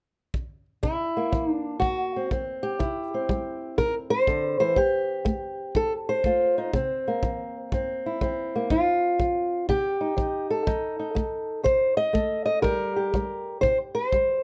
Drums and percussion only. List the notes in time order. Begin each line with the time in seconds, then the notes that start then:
0.34 kick
0.83 kick
1.33 kick
1.82 kick
2.31 kick
2.80 kick
3.29 kick
3.78 kick
4.27 kick
4.76 kick
5.26 kick
5.75 kick
6.24 kick
6.74 kick
7.23 kick
7.72 kick
8.21 kick
8.70 kick
9.20 kick
9.69 kick
10.18 kick
10.67 kick
11.16 kick
11.66 kick
12.15 kick
12.64 kick
13.14 kick
13.63 kick
14.13 kick